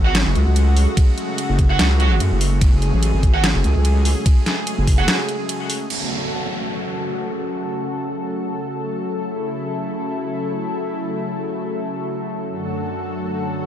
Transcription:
0.00 0.24 G#1 loud
0.00 5.86 C#3 medium
0.00 5.86 F#3 medium
0.00 5.86 G#3 medium
0.00 5.86 A3 medium
0.00 2.61 F#4 medium
0.05 0.14 F#4 medium
0.05 0.14 C#5 medium
0.05 0.14 F#5 loud
0.15 snare loud
0.15 closed hi-hat medium
0.15 ride medium
0.26 0.34 F#1 loud
0.35 0.45 C#2 loud
0.35 closed hi-hat medium
0.47 0.86 C#2 loud
0.56 closed hi-hat medium
0.56 ride soft
0.77 open hi-hat medium
0.97 kick loud
0.97 closed hi-hat medium
0.97 ride medium
1.18 closed hi-hat soft
1.38 closed hi-hat medium
1.38 ride soft
1.49 1.78 F#1 loud
1.59 kick medium
1.59 closed hi-hat medium
1.70 1.85 F#4 medium
1.70 1.85 C#5 medium
1.70 1.85 F#5 loud
1.79 2.19 C#2 medium
1.79 snare loud
1.79 closed hi-hat medium
1.79 ride medium
2.00 2.10 F#4 medium
2.00 2.10 C#5 medium
2.00 2.10 F#5 loud
2.00 closed hi-hat medium
2.20 2.30 F#2 loud
2.20 closed hi-hat medium
2.20 ride soft
2.32 2.60 F#1 loud
2.41 open hi-hat medium
2.61 2.71 F#1 loud
2.61 5.89 G#4 medium
2.61 kick loud
2.61 closed hi-hat medium
2.61 ride medium
2.73 2.91 F#1 loud
2.82 closed hi-hat medium
2.93 3.12 A1 loud
3.03 closed hi-hat medium
3.03 ride soft
3.14 3.53 G#1 loud
3.23 kick medium
3.23 closed hi-hat medium
3.34 3.43 F#4 medium
3.34 3.43 C#5 medium
3.34 3.43 F#5 loud
3.44 snare loud
3.44 closed hi-hat medium
3.44 ride medium
3.55 3.63 F#1 loud
3.64 3.74 C#2 loud
3.64 closed hi-hat medium
3.75 4.15 C#2 loud
3.85 closed hi-hat medium
3.85 ride medium
4.05 open hi-hat loud
4.26 kick loud
4.26 closed hi-hat medium
4.26 ride medium
4.46 snare medium
4.46 closed hi-hat medium
4.67 closed hi-hat medium
4.67 ride soft
4.78 5.07 F#1 loud
4.87 kick medium
4.87 open hi-hat medium
4.98 5.13 F#4 medium
4.98 5.13 C#5 medium
4.98 5.13 F#5 medium
5.08 snare loud
5.08 closed hi-hat medium
5.08 ride medium
5.29 closed hi-hat medium
5.49 closed hi-hat medium
5.49 ride soft
5.70 open hi-hat loud
5.90 12.44 C#3 medium
5.90 13.66 F#3 medium
5.90 13.66 A3 medium
5.90 9.16 F#4 medium
5.90 12.44 A4 medium
5.90 crash medium
5.90 downlifter medium
9.19 12.45 E4 medium
12.48 13.66 F#2 medium
12.48 13.66 D3 medium
12.48 13.66 F#4 medium
12.48 13.66 A4 medium

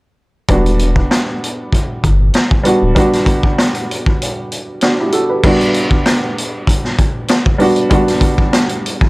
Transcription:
0.48 1.02 E1 loud
0.48 1.65 G3 medium
0.48 1.66 B3 medium
0.48 1.66 D4 medium
0.48 1.67 F#4 medium
0.48 kick loud
0.48 closed hi-hat medium
0.66 closed hi-hat medium
0.79 closed hi-hat medium
0.96 kick loud
1.11 snare loud
1.11 closed hi-hat medium
1.44 closed hi-hat medium
1.73 kick medium
1.73 closed hi-hat medium
2.04 2.30 G1 loud
2.04 kick medium
2.04 closed hi-hat medium
2.34 snare loud
2.34 closed hi-hat medium
2.51 kick medium
2.63 2.93 G3 medium
2.63 2.94 B3 medium
2.63 2.95 D4 medium
2.63 2.95 F#4 loud
2.63 closed hi-hat medium
2.82 2.94 D1 medium
2.95 4.12 G3 medium
2.95 4.12 B3 medium
2.95 4.13 D4 medium
2.95 4.14 F#4 loud
2.95 kick loud
2.95 closed hi-hat medium
3.13 snare soft
3.13 closed hi-hat medium
3.26 kick loud
3.26 closed hi-hat medium
3.43 kick medium
3.58 snare loud
3.58 closed hi-hat medium
3.75 closed hi-hat medium
3.91 closed hi-hat medium
4.06 kick loud
4.22 closed hi-hat medium
4.52 closed hi-hat medium
4.81 4.99 D4 medium
4.81 4.98 F#4 medium
4.81 snare loud
4.81 closed hi-hat medium
5.00 5.13 E4 medium
5.00 5.13 G4 medium
5.12 5.29 F#4 medium
5.12 5.29 A4 medium
5.12 closed hi-hat medium
5.29 5.59 G4 soft
5.29 5.59 B4 medium
5.44 6.60 G3 medium
5.44 6.61 B3 medium
5.44 6.61 D4 medium
5.44 6.62 F#4 medium
5.44 kick loud
5.44 crash loud
5.61 closed hi-hat medium
5.74 closed hi-hat medium
5.91 kick loud
6.06 finger snap medium
6.06 snare loud
6.06 closed hi-hat medium
6.38 closed hi-hat medium
6.67 kick medium
6.67 closed hi-hat medium
6.85 snare soft
6.99 kick loud
6.99 closed hi-hat medium
7.28 finger snap medium
7.28 snare loud
7.28 closed hi-hat medium
7.46 kick loud
7.58 7.88 G3 medium
7.58 7.89 B3 medium
7.58 7.90 D4 medium
7.58 7.90 F#4 loud
7.58 open hi-hat medium
7.76 closed hi-hat medium
7.90 9.07 G3 medium
7.90 9.07 B3 medium
7.90 9.08 D4 medium
7.90 9.08 F#4 loud
7.90 kick loud
7.90 closed hi-hat medium
8.08 snare soft
8.08 closed hi-hat medium
8.21 kick loud
8.21 closed hi-hat medium
8.38 kick loud
8.53 finger snap medium
8.53 snare loud
8.53 closed hi-hat medium
8.69 closed hi-hat medium
8.86 closed hi-hat medium
9.01 kick loud

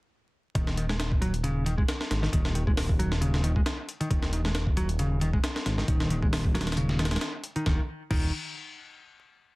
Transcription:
0.55 1.85 D#1 loud
0.55 0.76 D#3 loud
0.55 kick loud
0.55 closed hi-hat medium
0.67 snare soft
0.77 0.85 D#3 loud
0.77 closed hi-hat medium
0.89 0.93 G#3 medium
0.89 snare medium
1.00 snare loud
1.00 closed hi-hat medium
1.12 kick loud
1.22 1.33 F#3 loud
1.22 closed hi-hat medium
1.34 closed hi-hat soft
1.44 1.65 C#3 loud
1.44 closed hi-hat medium
1.66 1.73 D#3 loud
1.66 closed hi-hat medium
1.78 1.82 G#3 medium
1.78 kick loud
1.88 snare loud
1.88 closed hi-hat medium
2.01 snare medium
2.11 2.28 G#1 medium
2.11 snare medium
2.11 closed hi-hat medium
2.22 2.32 D#3 medium
2.22 snare soft
2.32 3.63 D#1 loud
2.32 2.54 D#3 loud
2.32 kick loud
2.32 closed hi-hat medium
2.45 snare soft
2.55 2.62 D#3 loud
2.55 closed hi-hat medium
2.67 2.71 G#3 medium
2.67 kick loud
2.77 snare loud
2.77 open hi-hat medium
2.89 kick medium
2.99 3.10 F#3 loud
2.99 closed hi-hat medium
3.12 snare medium
3.21 3.43 C#3 loud
3.21 closed hi-hat medium
3.34 snare soft
3.44 3.51 D#3 loud
3.44 closed hi-hat medium
3.56 3.60 G#3 medium
3.56 kick loud
3.66 snare loud
3.66 closed hi-hat medium
3.89 closed hi-hat medium
4.00 4.10 D#3 medium
4.00 closed hi-hat soft
4.10 5.40 D#1 loud
4.10 4.32 D#3 loud
4.10 kick loud
4.10 closed hi-hat medium
4.22 snare soft
4.33 4.40 D#3 loud
4.33 closed hi-hat medium
4.45 4.49 G#3 medium
4.45 snare medium
4.55 snare loud
4.55 closed hi-hat medium
4.67 kick medium
4.77 4.88 F#3 loud
4.77 closed hi-hat medium
4.89 closed hi-hat soft
4.99 5.21 C#3 loud
4.99 closed hi-hat medium
5.21 5.29 D#3 loud
5.21 closed hi-hat medium
5.33 5.37 G#3 medium
5.33 kick loud
5.44 snare loud
5.44 closed hi-hat medium
5.56 snare medium
5.66 5.84 G#1 medium
5.66 snare medium
5.66 closed hi-hat medium
5.78 5.87 D#3 medium
5.78 snare soft
5.88 7.18 D#1 loud
5.88 6.09 D#3 loud
5.88 kick loud
5.88 closed hi-hat medium
6.00 snare soft
6.10 6.18 D#3 loud
6.10 closed hi-hat medium
6.22 6.26 G#3 medium
6.22 kick medium
6.33 snare loud
6.33 open hi-hat medium
6.45 kick loud
6.55 6.66 F#3 loud
6.55 snare medium
6.55 closed hi-hat medium
6.61 snare medium
6.61 closed hi-hat medium
6.67 snare medium
6.67 closed hi-hat medium
6.72 snare loud
6.72 closed hi-hat medium
6.77 6.98 C#3 loud
6.77 closed hi-hat medium
6.89 snare soft
6.99 7.07 D#3 loud
6.99 snare medium
6.99 closed hi-hat medium
7.05 snare medium
7.05 closed hi-hat medium
7.11 7.15 G#3 medium
7.11 snare medium
7.11 closed hi-hat medium
7.16 snare medium
7.16 closed hi-hat medium
7.21 snare loud
7.21 closed hi-hat medium
7.44 closed hi-hat medium
7.56 7.65 D#3 medium
7.56 closed hi-hat soft
7.66 7.79 D#1 loud
7.66 7.79 D#3 medium
7.66 kick loud
7.66 snare medium
8.10 8.31 D#1 loud
8.10 8.31 D#3 loud
8.10 kick loud
8.10 crash medium

